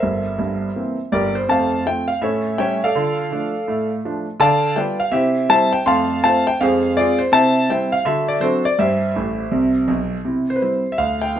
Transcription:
Already playing: A#4 C5 E5
0.03 G1 G2
0.39 G1 G2
0.76 E3 A#3 C4
1.12 G1 G2 G4 A#4 D5
1.35 C5
1.49 F2 A3 C5 F5 A5
1.86 F3 A3 C4 G5
2.08 F5
2.22 A2 C#4 A4 C#5 E5
2.58 G3 A3 C#4 C#5 E5 G5
2.84 A4 D5 F5
2.95 D3 F4
3.31 F3 A3 D4
3.68 A2
4.05 F3 A3 D4
4.40 D3 D5 F5 A5
4.76 G3 B3 F4 B4 D5 G5
5.00 F5
5.12 C3 E4 G4 C5 E5
5.49 G3 C4 E4 C5 E5 A5
5.73 G5
5.86 F2 A3 F5 A5 C6
6.24 A3 C4 F4 C5 F5 A5
6.47 G5
6.61 F2 G#3 G#4 C5 F5
6.97 G#3 C4 F4 G#4 D5
7.19 C5
7.32 C3 E4 C5 E5 A5
7.70 G3 C4 E4 C5 E5 G5
7.92 F5
8.05 D3 F#4 E5
8.28 D5
8.40 F#3 C4 D4 F#4 A4 C5
8.65 D5
8.79 G2 G4 C5 E5
9.16 A1 A2
9.51 C2 C3
9.88 B1 B2
10.25 C3 E4
10.50 C5
10.56 B4
10.62 G3 C4 E4 C5
10.92 E5
10.98 D2 F5
11.22 G5
11.36 F3 B3 D4

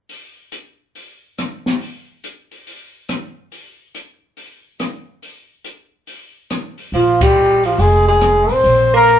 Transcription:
0.09 open hi-hat
0.52 closed hi-hat
0.95 open hi-hat
1.38 cross-stick, closed hi-hat
1.66 snare
1.81 open hi-hat
2.24 closed hi-hat
2.51 open hi-hat
2.67 open hi-hat
3.09 cross-stick, closed hi-hat
3.52 open hi-hat
3.95 closed hi-hat
4.37 open hi-hat
4.80 cross-stick, closed hi-hat
5.23 open hi-hat
5.64 closed hi-hat
6.07 open hi-hat
6.50 cross-stick, closed hi-hat
6.78 open hi-hat
6.92 A#1 F3 F4, open hi-hat
7.21 G3 G4, kick, ride
7.63 F3 F4, open hi-hat
7.78 F1 G#3 G#4, open hi-hat
8.07 G#3 G#4
8.21 cross-stick, closed hi-hat
8.49 A1 C4, open hi-hat
8.53 C5
8.64 A#1, open hi-hat
8.94 A#3 A#4
9.06 closed hi-hat

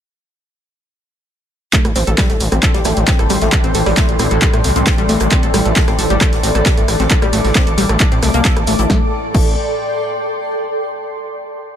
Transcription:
1.73 A2 E3 A3 A4, kick, clap, closed hi-hat, shaker
1.81 D5, cross-stick, closed hi-hat
1.85 A1
1.93 A1 C4 C6, open hi-hat, shaker
2.07 A1 A4, closed hi-hat
2.14 G5, shaker
2.18 G3, kick, cross-stick, snare, clap, closed hi-hat
2.29 A1 A3, snare, closed hi-hat
2.40 A1, open hi-hat, shaker
2.52 A1 C4, cross-stick, closed hi-hat
2.63 A4, kick, clap, closed hi-hat, shaker
2.74 A1 G3, snare, closed hi-hat
2.85 A1 A3, cross-stick, snare, open hi-hat, shaker
2.97 A1, closed hi-hat
3.07 C4, kick, snare, clap, closed hi-hat, shaker
3.19 G1 A4, cross-stick, closed hi-hat
3.30 A1 G3, open hi-hat, shaker
3.41 A1 A3, snare, closed hi-hat
3.52 kick, cross-stick, clap, closed hi-hat, shaker
3.64 A1 C4, closed hi-hat
3.74 A1 A4, open hi-hat, shaker
3.86 A1 G3, cross-stick, open hi-hat
3.97 A3, kick, snare, clap, closed hi-hat, shaker
4.09 A1, closed hi-hat
4.19 A1 C4, cross-stick, open hi-hat, shaker
4.31 A1 A4, closed hi-hat
4.41 G3, kick, clap, closed hi-hat, shaker
4.54 A2 A3, cross-stick, closed hi-hat
4.64 C2, open hi-hat, shaker
4.76 C2 C4, closed hi-hat
4.87 A4, kick, cross-stick, snare, clap, closed hi-hat, shaker
4.98 A1 G3, closed hi-hat
5.09 A1 A3, open hi-hat, shaker
5.20 A1, cross-stick, closed hi-hat
5.31 C4 A5, kick, clap, closed hi-hat, shaker
5.43 A1 A4, closed hi-hat
5.54 A1 G3, cross-stick, open hi-hat, shaker
5.65 A1 A3, closed hi-hat
5.76 kick, snare, clap, closed hi-hat, shaker
5.87 A1 C4, cross-stick, snare, closed hi-hat
5.99 A1 A4, open hi-hat, shaker
6.10 A1 G3 D6, closed hi-hat
6.21 A3, kick, cross-stick, clap, closed hi-hat, shaker
6.33 A1, snare, closed hi-hat
6.43 A1 C4, snare, open hi-hat, shaker
6.55 A1 A4, cross-stick, closed hi-hat
6.66 G3, kick, snare, clap, closed hi-hat, shaker
6.77 G1 A3, closed hi-hat
6.88 A1, cross-stick, open hi-hat, shaker
7.00 A1 C4, snare, closed hi-hat
7.10 A4, kick, clap, closed hi-hat, shaker
7.22 A1 G3, cross-stick, closed hi-hat
7.33 A1 A3, open hi-hat, shaker
7.45 A1, open hi-hat
7.55 C4, kick, cross-stick, snare, clap, closed hi-hat, shaker
7.67 A1 A4, closed hi-hat
7.78 A1 G3, open hi-hat, shaker
7.89 A1 A3, cross-stick, closed hi-hat
8.00 kick, clap, closed hi-hat, shaker
8.12 A2 C4, closed hi-hat
8.23 C2 A3, cross-stick, open hi-hat, shaker
8.34 C2 A#3, closed hi-hat
8.44 A4, kick, snare, clap, closed hi-hat, shaker
8.56 A1, cross-stick, closed hi-hat
8.67 A1 A3, open hi-hat, shaker
8.79 A1 E4, closed hi-hat
8.90 A1 A3 A4, kick, snare
8.97 D5
9.03 G5
9.10 C6
9.34 A1 A3, kick, crash

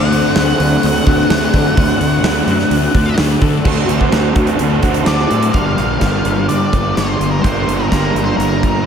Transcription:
Already playing: D2 D3 A3 C4 D4 F#4 C5 F#5
0.12 A3 D4, open hi-hat
0.36 D2 D3 A3 D4 F#5, snare, open hi-hat
0.60 D2, open hi-hat
0.83 D2 F#5, open hi-hat
1.05 D2 A3 D4, kick, open hi-hat
1.29 D2 D3 A3 D4, snare, open hi-hat
1.53 D3 A3 D4, kick, open hi-hat
1.75 D2 D3 A3 D4 D5, kick, open hi-hat
2.00 D2 A3 D4, open hi-hat
2.23 D2 D3 A3 D4, snare, open hi-hat
2.47 F#2, open hi-hat
2.59 snare
2.70 D2, open hi-hat
2.94 D2 A3 D4, kick, open hi-hat
3.18 D2 D3 A3 D4, snare, open hi-hat
3.42 D3 A3 D4, kick, open hi-hat
3.63 D2 D3 A3 C4 D4 F#4 C5 D5 A5, kick, crash
3.67 F#4
3.88 D2 A3 C4 D4 F#4, closed hi-hat
4.01 kick
4.11 D2 D3 A3 C4 D4 F#4, snare, closed hi-hat
4.35 D2 A3 C4 D4 F#4, kick, closed hi-hat
4.47 closed hi-hat
4.58 D2 D3 A3 C4 D4 F#4, closed hi-hat
4.82 D2 A3 C4 D4 F#4, kick, closed hi-hat
4.94 closed hi-hat
5.05 D2 D3 A3 C4 D4 F#4 D5, snare, closed hi-hat
5.19 snare
5.29 A2 A3 C4 D4 F#4, closed hi-hat
5.43 closed hi-hat
5.52 G1 G2 D3 G3 A#3 D4 F5, kick, closed hi-hat
5.78 A#1, closed hi-hat
6.01 G1 G2 D3 G3, kick, snare, closed hi-hat
6.25 G1 D3 G3, closed hi-hat
6.48 G2 D3 G3 D5, closed hi-hat
6.73 G1, kick, closed hi-hat
6.96 G1 G2 D3 G3 C5, snare, closed hi-hat
7.20 G1, closed hi-hat
7.31 A#4
7.42 G1 G2 D3 G3 A#3 C5, kick, closed hi-hat
7.46 G3 D4
7.68 G1, closed hi-hat
7.77 A#4
7.88 G1 G2 D3 A#4, kick, snare, closed hi-hat
7.93 G3
8.15 G1 D3 G3, closed hi-hat
8.24 C5
8.37 G1 G2 D3 A#4, closed hi-hat
8.41 G3
8.63 kick, closed hi-hat

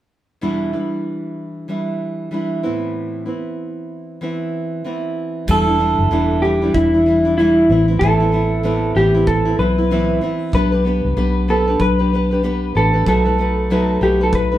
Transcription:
0.41 E2 B2 E3 G3 D4 E4
0.73 E3 G3 D4 E4
1.68 E3 G3 D4 E4
2.31 E3 G3 D4 E4
2.63 A2 E3 B3 C4 E4
3.26 B3 C4 E4
4.21 E3 B3 C4 E4
4.84 E3 B3 C4 E4
5.47 E1 E2 B2 E3 G3 D4 E4 A4, kick, crash
5.67 E3 G3 D4 E4
5.79 E3 G3 D4 E4
5.99 F#1
6.11 E1 E2 B2 E3 G3 D4 E4
6.42 E3 G3 D4 E4 G4
6.62 E3 G3 D4 E4
6.74 E1 E4, kick
6.94 E3 G3 D4 E4
7.06 E3 G3 D4 E4
7.25 E3 G3 D4 E4
7.38 E2 B2 E3 G3 D4 E4
7.69 A1 E3 B3 C4 E4
7.88 B3 C4 E4
7.99 A1 A2 E3 B3 C4 A4, kick
8.03 E4
8.20 B3 C4 E4
8.32 E3 B3 C4 E4
8.63 A2 E3 B3 C4 E4
8.95 A1 E3 B3 C4 E4 G4
9.14 B3 C4 E4
9.27 A4, kick
9.45 B3 C4 E4
9.59 B1 E3 B3 C4 E4 B4
9.78 B3 C4 E4
9.91 A2 E3 B3 C4 E4
10.21 E3 B3 C4 E4
10.53 B1 B3 D4 G4 B4, kick
10.72 D4 G4 B4
10.85 B3 D4 G4 B4
11.05 C2
11.17 B1 B3 D4 G4 B4
11.48 B3 D4 G4 A4 B4
11.67 D4 G4 B4
11.79 B1 B4, kick
11.99 D4 G4 B4
12.13 B3 D4 G4 B4
12.31 D4 G4 B4
12.43 B3 D4 G4 B4
12.75 A1 B3 D4 G4 A4 B4
12.93 D4 G4 B4
13.06 B1 B2 F#3 A3 D#4 F#4 A4 B4, kick
13.25 A3 D#4 F#4 B4
13.38 A3 D#4 F#4 B4
13.70 B2 F#3 A3 D#4 F#4 B4
14.01 B1 A3 D#4 F#4 G4 B4
14.21 A3 D#4 F#4 A4 B4
14.33 B4, kick
14.52 A3 D#4 F#4 B4

